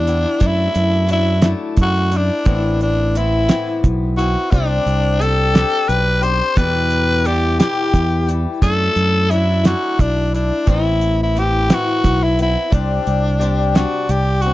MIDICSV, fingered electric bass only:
0, 0, Header, 1, 2, 480
1, 0, Start_track
1, 0, Tempo, 683371
1, 294, Time_signature, 6, 3, 24, 8
1, 10209, End_track
2, 0, Start_track
2, 0, Title_t, "Fingered electric bass"
2, 0, Program_c, 0, 33
2, 0, Note_on_c, 0, 40, 82
2, 174, Note_off_c, 0, 40, 0
2, 287, Note_on_c, 0, 42, 98
2, 471, Note_off_c, 0, 42, 0
2, 531, Note_on_c, 0, 42, 94
2, 1075, Note_off_c, 0, 42, 0
2, 1247, Note_on_c, 0, 42, 84
2, 1612, Note_off_c, 0, 42, 0
2, 1728, Note_on_c, 0, 33, 93
2, 2455, Note_off_c, 0, 33, 0
2, 2695, Note_on_c, 0, 35, 96
2, 3057, Note_off_c, 0, 35, 0
2, 3179, Note_on_c, 0, 36, 104
2, 3359, Note_off_c, 0, 36, 0
2, 3415, Note_on_c, 0, 36, 91
2, 3958, Note_off_c, 0, 36, 0
2, 4137, Note_on_c, 0, 35, 68
2, 4499, Note_off_c, 0, 35, 0
2, 4614, Note_on_c, 0, 40, 98
2, 5339, Note_off_c, 0, 40, 0
2, 5574, Note_on_c, 0, 40, 90
2, 5937, Note_off_c, 0, 40, 0
2, 6056, Note_on_c, 0, 42, 88
2, 6237, Note_off_c, 0, 42, 0
2, 6294, Note_on_c, 0, 42, 86
2, 6838, Note_off_c, 0, 42, 0
2, 7017, Note_on_c, 0, 35, 77
2, 7379, Note_off_c, 0, 35, 0
2, 7499, Note_on_c, 0, 33, 90
2, 8222, Note_off_c, 0, 33, 0
2, 8456, Note_on_c, 0, 35, 85
2, 8818, Note_off_c, 0, 35, 0
2, 8937, Note_on_c, 0, 36, 97
2, 9118, Note_off_c, 0, 36, 0
2, 9181, Note_on_c, 0, 36, 95
2, 9722, Note_off_c, 0, 36, 0
2, 9898, Note_on_c, 0, 36, 78
2, 10209, Note_off_c, 0, 36, 0
2, 10209, End_track
0, 0, End_of_file